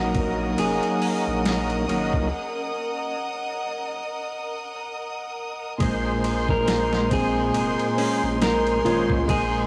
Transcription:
0.00 0.55 A#1 loud
0.00 1.84 F#3 medium
0.00 1.85 A#3 medium
0.00 2.32 C#4 medium
0.00 1.86 D#4 medium
0.00 0.55 F#4 medium
0.00 2.33 A#4 medium
0.00 5.76 A#4 medium
0.00 5.76 D#5 medium
0.00 5.76 F#5 medium
0.00 5.76 D#6 medium
0.15 kick medium
0.15 ride medium
0.58 0.80 F1 loud
0.58 2.29 G#4 medium
0.58 ride medium
0.83 ride soft
1.02 open hi-hat medium
1.27 1.86 A#1 loud
1.45 snare loud
1.45 ride medium
1.70 ride soft
1.88 2.11 G#1 medium
1.88 2.28 F#3 medium
1.88 2.28 A#3 medium
1.88 2.29 D#4 medium
1.88 ride medium
2.13 2.30 C#2 medium
2.13 kick medium
5.78 7.51 A#1 loud
5.78 8.79 A#2 medium
5.78 6.22 G#3 loud
5.78 8.80 G#3 medium
5.78 9.67 G#3 medium
5.78 9.67 G#4 medium
5.78 9.67 A#4 medium
5.78 8.81 C5 medium
5.78 9.67 G#5 medium
5.78 9.67 C6 medium
5.78 kick loud
5.78 ride medium
6.24 ride medium
6.49 7.13 A#4 loud
6.49 kick loud
6.67 7.09 A#3 medium
6.67 snare loud
6.67 ride medium
6.93 snare medium
7.11 7.94 C4 medium
7.11 8.43 G#4 loud
7.11 kick loud
7.11 ride medium
7.54 7.76 F1 medium
7.54 ride medium
7.79 ride soft
7.98 8.39 C#4 medium
7.98 open hi-hat medium
8.23 8.81 A#1 loud
8.42 9.25 A#4 medium
8.42 snare loud
8.42 ride medium
8.67 ride soft
8.84 9.07 G#1 medium
8.84 9.23 A#2 medium
8.84 9.24 G#3 medium
8.84 9.25 C#4 loud
8.84 9.25 F4 loud
8.84 9.24 C5 medium
8.84 ride medium
9.10 9.26 C#2 medium
9.10 kick loud
9.26 9.67 A#1 loud
9.26 9.67 A#2 medium
9.26 9.67 G#3 medium
9.26 9.67 G#3 loud
9.26 9.67 G#4 loud
9.26 kick loud
9.26 ride medium
9.30 9.67 C5 medium

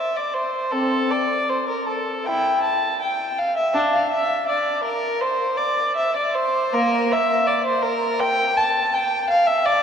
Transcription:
0.00 0.16 E5 medium
0.17 0.35 D5 medium
0.34 0.73 C5 medium
0.71 1.08 C4 medium
0.71 1.11 A4 medium
1.11 1.49 D5 medium
1.49 1.69 C5 medium
1.69 1.88 A#4 medium
1.88 2.25 A4 medium
2.26 2.61 E4 medium
2.26 2.64 G5 medium
2.63 3.00 A5 medium
3.02 3.38 G5 medium
3.38 3.57 F5 medium
3.57 3.76 E5 medium
3.74 3.93 D4 medium
3.93 4.12 F5 medium
4.11 4.48 E5 medium
4.49 4.86 D5 medium
4.84 5.21 A#4 medium
5.21 5.59 C5 medium
5.57 5.96 D5 medium
5.96 6.16 E5 medium
6.16 6.35 D5 medium
6.35 6.73 C5 medium
6.74 7.08 A#3 medium
6.74 7.11 A#4 medium
7.12 7.49 E5 medium
7.47 7.66 D5 medium
7.67 7.84 C5 medium
7.82 8.20 A#4 medium
8.20 8.57 G5 loud
8.57 8.94 A5 medium
8.94 9.31 G5 medium
9.30 9.48 F5 medium
9.47 9.66 E5 medium
9.66 9.83 D5 loud

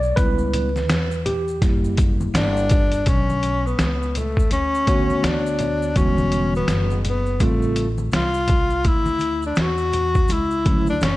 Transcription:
0.00 0.14 B1 medium
0.00 0.18 D5 medium
0.00 maracas soft
0.16 0.89 C#2 loud
0.16 0.68 G3 medium
0.16 0.68 B3 medium
0.16 0.69 E4 medium
0.16 1.22 B4 loud
0.16 kick loud
0.16 closed hi-hat medium
0.16 maracas medium
0.38 maracas soft
0.54 closed hi-hat medium
0.54 high conga soft
0.54 low conga medium
0.54 maracas soft
0.76 snare soft
0.76 maracas soft
0.89 1.58 E2 loud
0.89 snare loud
0.89 closed hi-hat medium
0.89 maracas medium
1.11 maracas soft
1.26 1.94 G4 medium
1.26 closed hi-hat medium
1.26 low conga medium
1.26 maracas medium
1.48 maracas soft
1.62 2.31 F#1 loud
1.62 2.67 G3 medium
1.62 2.67 A#3 medium
1.62 2.67 E4 medium
1.62 kick loud
1.62 snare soft
1.62 closed hi-hat loud
1.62 maracas medium
1.84 maracas soft
1.97 kick loud
1.97 closed hi-hat medium
1.97 maracas soft
2.20 high conga medium
2.20 maracas soft
2.34 3.03 G1 medium
2.34 3.10 D4 loud
2.34 snare loud
2.34 closed hi-hat loud
2.34 maracas medium
2.57 maracas medium
2.69 kick loud
2.69 closed hi-hat medium
2.69 low conga medium
2.69 maracas medium
2.92 closed hi-hat medium
2.92 maracas soft
3.06 3.75 B1 medium
3.06 3.68 C#4 medium
3.06 kick loud
3.06 closed hi-hat medium
3.06 maracas medium
3.30 high conga medium
3.30 maracas soft
3.43 closed hi-hat medium
3.43 high conga soft
3.43 maracas soft
3.66 4.19 B3 medium
3.66 maracas soft
3.79 4.48 C#2 medium
3.79 snare loud
3.79 closed hi-hat medium
3.79 maracas medium
4.02 maracas soft
4.15 4.52 A3 medium
4.15 closed hi-hat medium
4.15 low conga medium
4.15 maracas soft
4.37 kick medium
4.37 maracas soft
4.51 5.20 D2 medium
4.51 5.26 C#4 medium
4.51 closed hi-hat medium
4.51 maracas medium
4.75 maracas soft
4.87 5.90 D3 medium
4.87 5.90 A3 medium
4.87 5.90 B3 medium
4.87 5.91 F#4 medium
4.87 5.91 C#5 medium
4.87 kick medium
4.87 closed hi-hat medium
4.87 maracas soft
5.10 high conga medium
5.10 maracas soft
5.23 5.97 D2 medium
5.23 5.99 D4 medium
5.23 snare loud
5.23 closed hi-hat medium
5.23 maracas medium
5.46 maracas medium
5.59 closed hi-hat medium
5.59 low conga medium
5.59 maracas soft
5.82 maracas soft
5.96 6.65 E1 loud
5.96 6.99 D3 medium
5.96 6.99 E3 medium
5.96 6.04 F#3 soft
5.96 6.99 B3 medium
5.96 6.54 C#4 loud
5.96 6.99 F#4 medium
5.96 kick loud
5.96 closed hi-hat medium
5.96 maracas medium
6.02 7.02 G3 medium
6.18 high conga medium
6.18 maracas soft
6.32 closed hi-hat medium
6.32 high conga soft
6.32 maracas soft
6.55 7.02 B3 medium
6.55 maracas soft
6.68 7.37 F#1 loud
6.68 snare loud
6.68 closed hi-hat medium
6.68 maracas medium
6.90 maracas soft
7.05 closed hi-hat medium
7.05 low conga medium
7.05 maracas soft
7.09 7.45 B3 medium
7.26 maracas soft
7.40 8.09 A1 loud
7.40 7.85 C#3 medium
7.40 7.85 G3 medium
7.40 7.86 A3 medium
7.40 7.89 A3 medium
7.40 7.86 C4 medium
7.40 7.86 F4 medium
7.40 kick medium
7.40 closed hi-hat medium
7.40 maracas medium
7.62 maracas soft
7.76 closed hi-hat medium
7.76 maracas soft
7.98 high conga medium
7.98 maracas soft
8.12 8.81 C2 medium
8.12 snare loud
8.12 closed hi-hat medium
8.12 maracas medium
8.16 8.89 F4 loud
8.34 maracas medium
8.48 kick medium
8.48 closed hi-hat medium
8.48 low conga medium
8.48 maracas soft
8.70 maracas soft
8.84 9.54 D2 loud
8.84 9.44 E4 loud
8.84 kick loud
8.84 closed hi-hat medium
8.84 maracas medium
9.06 high conga medium
9.06 maracas soft
9.19 closed hi-hat medium
9.19 high conga soft
9.19 maracas soft
9.42 9.62 D4 medium
9.42 maracas soft
9.55 10.26 E2 loud
9.55 snare loud
9.55 closed hi-hat medium
9.55 maracas medium
9.61 10.34 F#4 loud
9.78 maracas soft
9.93 closed hi-hat medium
9.93 low conga medium
9.93 maracas soft
10.15 kick medium
10.15 maracas soft
10.28 10.98 C#2 medium
10.28 closed hi-hat medium
10.28 maracas medium
10.32 10.89 E4 loud
10.51 maracas soft
10.65 10.93 D3 medium
10.65 10.93 F#3 medium
10.65 10.93 A3 medium
10.65 10.94 C#4 medium
10.65 10.94 E4 medium
10.65 kick loud
10.65 closed hi-hat medium
10.65 maracas soft
10.87 11.02 D4 loud
10.87 high conga medium
10.87 maracas soft
11.01 11.17 F#1 medium
11.01 11.17 C#4 medium
11.01 snare loud
11.01 closed hi-hat medium
11.01 maracas medium

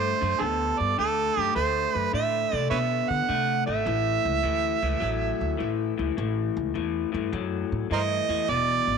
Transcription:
0.00 0.12 G2 medium
0.00 0.18 D3 medium
0.00 0.19 A3 medium
0.00 0.40 C5 medium
0.21 0.36 F#2 medium
0.21 0.38 D3 medium
0.21 0.39 A3 medium
0.39 0.70 D2 medium
0.39 0.94 D3 medium
0.39 0.95 B3 medium
0.39 0.42 G#4 medium
0.39 0.80 A4 medium
0.79 0.94 G2 medium
0.79 0.98 D5 medium
0.98 1.28 D2 medium
0.98 1.33 D3 medium
0.98 1.33 A3 medium
0.98 1.41 A4 medium
1.37 1.51 F#2 medium
1.37 1.54 D3 medium
1.37 1.54 A3 medium
1.37 1.52 G4 medium
1.55 1.85 D2 medium
1.55 2.09 D3 medium
1.55 2.10 A3 medium
1.55 1.94 C5 loud
1.94 2.09 F#2 medium
1.94 2.10 B4 loud
2.13 2.43 A2 medium
2.13 2.48 D3 medium
2.13 2.49 A3 medium
2.13 2.56 E5 medium
2.52 2.67 C3 medium
2.52 2.69 D3 medium
2.52 2.69 A3 medium
2.56 2.68 D5 medium
2.70 3.00 B2 medium
2.70 3.25 D3 medium
2.70 3.26 B3 medium
2.70 2.79 B4 medium
2.70 2.78 C#5 medium
2.70 3.11 E5 medium
3.09 3.24 D3 medium
3.09 3.66 F#5 loud
3.29 3.58 C3 medium
3.29 3.64 D3 medium
3.29 3.64 A3 loud
3.67 3.82 G#1 medium
3.67 3.84 D3 medium
3.67 3.85 A3 medium
3.67 5.94 E5 loud
3.86 4.15 A1 loud
3.86 4.40 A2 medium
3.86 4.40 E3 medium
4.25 4.39 C#2 medium
4.43 4.73 D2 medium
4.43 4.79 A2 medium
4.43 4.79 E3 medium
4.82 4.97 C#2 medium
4.82 4.99 A2 medium
4.82 5.00 E3 medium
5.00 5.31 A1 medium
5.00 5.55 A2 medium
5.00 5.55 F#3 medium
5.41 5.55 D2 medium
5.57 5.89 A1 medium
5.57 5.93 A2 medium
5.57 5.94 E3 medium
5.98 6.13 C#2 medium
5.98 6.15 A2 medium
5.98 6.15 E3 medium
6.17 6.46 A1 loud
6.17 6.71 A2 medium
6.17 6.71 E3 medium
6.57 6.70 C#2 medium
6.74 7.04 E2 medium
6.74 7.09 A2 medium
6.74 7.10 E3 medium
7.12 7.28 G2 medium
7.12 7.30 A2 medium
7.12 7.30 E3 medium
7.32 7.62 F#2 medium
7.32 7.86 A2 medium
7.32 7.86 F#3 medium
7.72 7.86 A2 medium
7.90 8.19 G2 medium
7.90 8.25 A2 medium
7.90 8.25 E3 medium
7.90 8.00 A#4 medium
7.90 8.02 C5 medium
7.90 8.51 D#5 loud
8.29 8.43 E2 medium
8.29 8.46 A2 medium
8.29 8.46 E3 medium
8.48 8.77 E1 loud
8.48 8.98 E2 medium
8.48 8.98 B2 medium
8.48 8.98 D5 loud
8.87 8.98 G#1 medium

